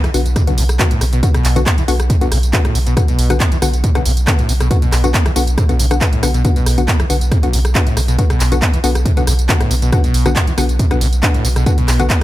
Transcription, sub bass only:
0.04 B1
0.14 B1
0.26 B1
0.47 B1
0.58 B1
0.69 B1
0.91 B1
1.01 B1
1.13 B1
1.34 B1
1.45 B1
1.56 B1
1.78 B1
1.88 B1
2.00 B1
2.21 B1
2.32 B1
2.43 B1
2.65 B1
2.75 B1
2.87 B1
3.08 B1
3.19 B1
3.30 B1
3.52 B1
3.62 B1
3.74 B1
3.95 B1
4.05 B1
4.17 B1
4.39 B1
4.49 B1
4.60 B1
4.82 B1
4.92 B1
5.04 B1
5.26 B1
5.36 B1
5.47 B1
5.69 B1
5.79 B1
5.91 B1
6.13 B1
6.23 B1
6.34 B1
6.56 B1
6.66 B1
6.78 B1
7.00 B1
7.10 B1
7.21 B1
7.43 B1
7.53 B1
7.65 B1
7.87 B1
7.97 B1
8.08 B1
8.30 B1
8.40 B1
8.52 B1
8.74 B1
8.84 B1
8.95 B1
9.17 B1
9.27 B1
9.39 B1
9.60 B1
9.71 B1
9.82 B1
10.04 B1
10.14 B1
10.26 B1
10.47 B1
10.58 B1
10.69 B1
10.91 B1
11.01 B1
11.13 B1
11.34 B1
11.45 B1
11.56 B1
11.78 B1
11.88 B1
12.00 B1

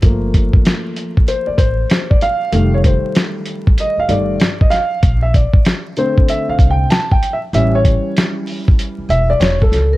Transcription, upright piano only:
0.02 F3 A3 A#3
1.28 C5
1.47 D5
1.58 C5
2.10 D5
2.22 F5
2.52 D#3 G3 A3
2.74 C#5
2.86 C5
3.80 D#5
4.00 F5
4.08 D#3 G3 A3 D5
4.61 D#5
4.70 F5
5.22 E5
5.35 D5
5.97 D3 A3 C4 C5
6.29 E5
6.49 F5
6.70 G5
6.91 A5
7.12 G5
7.33 E5
7.54 E3 G3 C#4 E5
7.75 C#5
9.10 E5
9.30 D5
9.40 C#5
9.62 A4

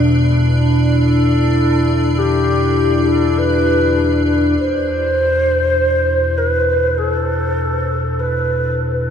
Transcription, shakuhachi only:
1.00 A4
2.18 G4
3.08 A4
3.39 B4
4.60 C5
6.38 B4
6.98 A4
8.20 B4

